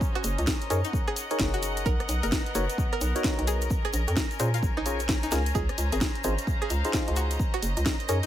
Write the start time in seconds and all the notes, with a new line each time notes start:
Already playing: C#4 C5 D#5 A#5
0.01 kick, shaker
0.15 F#4, cross-stick, closed hi-hat
0.24 F#1, open hi-hat, shaker
0.38 C#2, closed hi-hat, shaker
0.47 kick, snare, shaker
0.53 A#4
0.62 closed hi-hat
0.70 F#2 D#4 G#4 A#4 C#5, open hi-hat, shaker
0.84 D#4 F#5, closed hi-hat, shaker
0.93 kick, shaker
1.08 G#4, cross-stick
1.16 open hi-hat, shaker
1.30 D#4 G#4 A#4 C#5, closed hi-hat, shaker
1.39 F#1, kick, snare, shaker
1.54 F#4, closed hi-hat
1.63 open hi-hat, shaker
1.77 closed hi-hat, shaker
1.85 B1 B3 A#4, kick, shaker
2.00 cross-stick, closed hi-hat
2.09 B1, open hi-hat, shaker
2.23 F#1 A#4, closed hi-hat, shaker
2.32 kick, snare, shaker
2.46 closed hi-hat
2.55 F#1 D#4 F#4 A#4 C#5, open hi-hat, shaker
2.70 closed hi-hat, shaker
2.78 kick, shaker
2.93 A#4, cross-stick
3.01 B1, open hi-hat, shaker
3.15 D#4 F#4 A#4 C#5, closed hi-hat, shaker
3.24 kick, snare, shaker
3.39 B1, closed hi-hat
3.47 G#4, open hi-hat, shaker
3.62 closed hi-hat, shaker
3.70 C#4, kick, shaker
3.85 G#4, cross-stick, closed hi-hat
3.93 A#1, open hi-hat, shaker
4.04 F2 G#5, shaker
4.08 closed hi-hat
4.17 kick, snare, shaker
4.31 closed hi-hat, shaker
4.39 A#2 C#4 F4 G#4 C5, open hi-hat, shaker
4.54 F4 C5, closed hi-hat, shaker
4.63 A#1, kick, shaker
4.77 D#4, cross-stick
4.86 C#4 F4 G#4 C#5, open hi-hat, shaker
5.00 closed hi-hat, shaker
5.09 kick, snare, shaker
5.23 D#4, closed hi-hat, shaker
5.31 C#2 C#4 F4 G#4 A#4, snare, open hi-hat, shaker
5.46 closed hi-hat, shaker
5.55 C#2 G#4, kick, shaker
5.69 cross-stick, closed hi-hat
5.78 C#2, open hi-hat, shaker
5.92 G#1 G#4, closed hi-hat, shaker
6.01 kick, snare, shaker
6.15 closed hi-hat
6.22 G#1 D#4 F4 G#4 C5 D#5, open hi-hat, shaker
6.38 F5, closed hi-hat, shaker
6.47 kick, shaker
6.62 G#4, cross-stick
6.70 C#2, open hi-hat, shaker
6.85 D#4 F4 G#4 C5, closed hi-hat, shaker
6.93 kick, snare, shaker
7.08 C#2, closed hi-hat
7.16 F#4, open hi-hat, shaker
7.31 closed hi-hat, shaker
7.40 kick, shaker
7.54 F#4, cross-stick, closed hi-hat
7.63 F#1, open hi-hat, shaker
7.77 C#2, closed hi-hat, shaker
7.86 kick, snare, shaker
7.91 A#4
8.00 closed hi-hat
8.09 F#2 D#4 G#4 A#4 C#5, open hi-hat, shaker
8.23 D#4, closed hi-hat, shaker